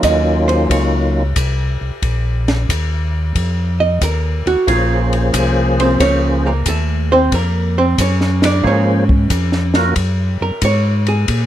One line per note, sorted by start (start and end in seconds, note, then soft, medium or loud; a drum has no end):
0.00 0.67 D#2 medium
0.00 1.23 F#3 medium
0.00 1.23 A#3 medium
0.00 1.23 C#4 medium
0.00 1.23 D#4 medium
0.00 1.23 F4 medium
0.00 kick soft
0.00 hi-hat pedal medium
0.00 ride medium
0.04 0.47 D#5 medium
0.48 0.69 C5 medium
0.48 ride soft
0.70 1.34 C#2 medium
0.70 1.32 C#5 medium
0.70 kick soft
0.70 ride medium
1.36 1.78 C2 medium
1.36 kick soft
1.36 hi-hat pedal medium
1.36 ride medium
1.81 1.92 C2 soft
2.02 2.67 A#1 medium
2.02 kick soft
2.02 ride medium
2.48 snare soft
2.48 ride soft
2.69 3.33 D#2 medium
2.69 kick soft
2.69 hi-hat pedal medium
2.69 ride medium
3.35 3.99 F2 medium
3.35 kick soft
3.35 ride medium
3.80 4.00 D#5 medium
4.01 4.43 D#2 medium
4.01 4.46 A#4 medium
4.01 kick soft
4.01 hi-hat pedal medium
4.01 ride medium
4.46 4.56 D#2 soft
4.46 4.67 F#4 loud
4.46 ride soft
4.67 5.31 A#1 medium
4.67 6.53 F3 medium
4.67 6.53 A#3 medium
4.67 6.53 C#4 medium
4.67 4.96 F4 medium
4.67 6.53 G#4 medium
4.67 6.53 C5 medium
4.67 kick soft
4.67 ride medium
5.13 ride soft
5.33 5.98 C2 medium
5.33 kick soft
5.33 hi-hat pedal medium
5.33 ride medium
5.80 6.00 C4 medium
5.80 6.00 C5 medium
5.80 ride soft
6.00 6.64 C#2 medium
6.00 6.44 C#4 medium
6.00 6.44 C#5 loud
6.00 kick soft
6.00 ride medium
6.46 6.66 A#3 medium
6.46 6.66 A#4 medium
6.66 7.30 D#2 medium
6.66 7.11 A3 medium
6.66 7.11 A4 medium
6.66 kick soft
6.66 hi-hat pedal medium
6.66 ride medium
7.12 7.32 C4 medium
7.12 7.32 C5 loud
7.32 7.96 F2 medium
7.32 7.77 A#3 medium
7.32 7.77 A#4 medium
7.32 kick soft
7.32 ride medium
7.78 7.98 C4 medium
7.78 7.98 C5 medium
7.98 8.62 F#2 medium
7.98 8.43 C#4 medium
7.98 8.43 C#5 medium
7.98 kick soft
7.98 hi-hat pedal medium
7.98 ride medium
8.21 snare soft
8.42 8.64 D4 medium
8.42 8.65 D5 loud
8.42 snare soft
8.42 ride medium
8.63 9.28 G#2 medium
8.63 9.04 F3 medium
8.63 9.04 A#3 medium
8.63 9.04 C#4 medium
8.63 9.73 C#4 medium
8.63 9.05 G#4 medium
8.63 9.04 C5 medium
8.63 9.72 C#5 medium
8.63 kick soft
9.09 kick medium
9.30 9.94 F2 medium
9.30 kick soft
9.30 hi-hat pedal medium
9.30 ride medium
9.52 snare soft
9.74 9.94 A#3 medium
9.74 9.94 C#4 medium
9.74 9.94 F4 medium
9.74 9.94 F#4 medium
9.74 9.95 A#4 medium
9.74 snare soft
9.74 ride soft
9.96 10.38 F#2 medium
9.96 kick soft
9.96 ride medium
10.41 10.51 F#2 soft
10.41 10.62 A#4 medium
10.62 11.26 G#2 medium
10.62 11.07 C#5 loud
10.62 kick soft
10.62 hi-hat pedal medium
10.62 ride medium
11.07 11.46 G#4 medium
11.07 ride soft
11.28 11.46 A#2 medium
11.28 kick soft
11.28 ride medium